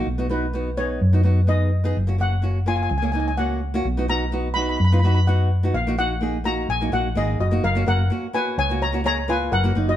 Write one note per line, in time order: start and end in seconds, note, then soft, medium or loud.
0.07 0.97 B1 loud
0.18 0.25 B3 medium
0.18 0.26 D#4 medium
0.18 0.26 F#4 medium
0.29 0.44 B3 medium
0.29 0.45 D#4 medium
0.29 0.45 F#4 medium
0.29 0.79 B4 medium
0.53 0.68 B3 medium
0.53 0.69 D#4 medium
0.53 0.69 F#4 medium
0.77 0.99 B3 medium
0.77 0.99 D#4 medium
0.77 1.00 G#4 medium
0.77 1.51 C#5 medium
1.01 1.92 F#2 medium
1.13 1.20 B3 medium
1.13 1.20 D#4 medium
1.13 1.21 F#4 medium
1.23 1.39 B3 medium
1.23 1.39 D#4 medium
1.23 1.40 F#4 medium
1.47 1.69 B3 medium
1.47 1.70 D#4 medium
1.47 1.70 G#4 medium
1.47 1.71 D#5 medium
1.84 1.96 B3 medium
1.84 1.96 D#4 medium
1.84 1.96 G#4 loud
1.97 2.87 F#1 medium
2.07 2.14 A#3 medium
2.07 2.15 C#4 medium
2.07 2.15 F#4 medium
2.18 2.34 A#3 medium
2.18 2.34 C#4 medium
2.18 2.34 F#4 medium
2.18 2.64 F#5 medium
2.42 2.57 A#3 medium
2.42 2.58 C#4 medium
2.42 2.58 F#4 medium
2.66 2.88 A#3 medium
2.66 2.88 C#4 medium
2.66 2.89 F4 medium
2.66 2.75 G#5 loud
2.76 2.81 G#5 medium
2.83 2.88 G#5 medium
2.90 3.81 C#2 medium
2.90 2.97 G#5 medium
2.98 3.04 G#5 medium
3.02 3.09 A#3 medium
3.02 3.09 C#4 medium
3.02 3.10 G#4 medium
3.02 3.11 G#5 medium
3.12 3.28 A#3 medium
3.12 3.29 C#4 medium
3.12 3.29 D#4 medium
3.12 3.19 G#5 medium
3.20 3.27 G#5 medium
3.28 3.35 G#5 medium
3.37 3.59 A#3 medium
3.37 3.59 C#4 medium
3.37 3.60 F#4 medium
3.37 3.60 F#5 medium
3.74 3.85 A#3 medium
3.74 3.85 C#4 medium
3.74 3.86 F#4 loud
3.85 4.76 B1 loud
3.97 4.04 B3 medium
3.97 4.04 D#4 medium
3.97 4.05 F#4 medium
4.08 4.23 B3 medium
4.08 4.23 D#4 medium
4.08 4.24 F#4 medium
4.08 4.53 A#5 loud
4.32 4.47 B3 medium
4.32 4.47 D#4 medium
4.32 4.47 F#4 medium
4.54 4.77 B3 medium
4.54 4.77 D#4 medium
4.54 4.78 F#4 medium
4.54 4.61 B5 loud
4.62 4.68 B5 medium
4.69 4.76 B5 medium
4.77 5.70 F#2 loud
4.77 4.83 B5 medium
4.85 4.91 B5 medium
4.92 4.99 B3 medium
4.92 4.99 D#4 medium
4.92 4.99 F4 medium
4.92 4.98 B5 medium
4.99 5.18 B3 medium
4.99 5.06 B5 medium
5.04 5.18 D#4 medium
5.04 5.19 F#4 medium
5.04 5.13 B5 medium
5.15 5.23 B5 medium
5.27 5.48 B3 medium
5.27 5.49 D#4 medium
5.27 5.49 F#4 medium
5.27 5.49 F#5 medium
5.63 5.74 B3 medium
5.63 5.75 D#4 medium
5.63 5.75 F#4 medium
5.74 6.64 A#1 loud
5.74 5.85 F5 medium
5.87 5.93 A#3 medium
5.87 5.94 D#4 medium
5.87 5.94 F#4 medium
5.98 6.12 A#3 medium
5.98 6.13 D#4 medium
5.98 6.13 F#4 medium
5.98 6.42 F#5 loud
6.21 6.36 A#3 medium
6.21 6.36 D#4 medium
6.21 6.37 G#4 medium
6.44 6.66 A#3 medium
6.44 6.66 D#4 medium
6.44 6.67 F#4 medium
6.44 6.67 A#5 loud
6.69 6.90 A#1 medium
6.69 6.94 G#5 loud
6.81 6.88 A#3 medium
6.81 6.88 D#4 medium
6.81 6.88 F#4 medium
6.92 7.14 A#1 medium
6.92 7.07 A#3 medium
6.92 7.07 D#4 medium
6.92 7.07 F#4 medium
6.92 7.17 F#5 medium
7.15 7.37 G#1 medium
7.15 7.37 A#3 medium
7.15 7.37 D#4 medium
7.15 7.38 G#4 medium
7.15 7.39 D#5 medium
7.39 7.61 F#1 medium
7.39 7.62 F#4 medium
7.39 7.64 D#5 medium
7.51 7.63 A#3 medium
7.51 7.63 D#4 medium
7.51 7.63 F#4 medium
7.63 7.85 F#1 loud
7.63 7.85 A#4 medium
7.63 7.86 F5 loud
7.75 7.82 A#3 medium
7.75 7.82 C#4 medium
7.75 7.83 F#4 medium
7.86 8.08 F#1 medium
7.86 8.01 A#3 medium
7.86 8.01 C#4 medium
7.86 8.02 F#4 medium
7.86 8.31 A#4 medium
7.86 8.36 F#5 loud
8.10 8.25 A#3 medium
8.10 8.25 C#4 medium
8.10 8.26 F#4 medium
8.33 8.55 A#3 medium
8.33 8.55 C#4 medium
8.33 8.56 F#4 medium
8.33 8.56 B4 medium
8.33 8.58 G#5 loud
8.58 9.48 C#2 medium
8.58 8.80 C#5 medium
8.58 8.82 G#5 loud
8.69 8.83 A#3 medium
8.69 8.84 C#4 medium
8.69 8.84 F#4 medium
8.82 9.03 C#5 medium
8.82 9.04 A#5 loud
8.93 9.00 A#3 medium
8.93 9.00 C#4 medium
8.93 9.00 F#4 medium
9.04 9.19 A#3 medium
9.04 9.19 C#4 medium
9.04 9.20 G#4 medium
9.04 9.27 C#5 loud
9.04 9.30 A#5 loud
9.28 9.49 A#3 medium
9.28 9.50 C#4 medium
9.28 9.50 F4 medium
9.28 9.51 B4 medium
9.28 9.53 G#5 medium
9.52 9.73 F#1 loud
9.52 9.85 A#4 medium
9.52 9.86 F#5 loud
9.64 9.71 A#3 medium
9.64 9.71 C#4 medium
9.64 9.71 F#4 medium
9.75 9.97 F#1 medium
9.75 9.90 A#3 medium
9.75 9.90 C#4 medium
9.75 9.91 D#4 medium
9.88 9.97 F#4 medium
9.88 9.97 D#5 medium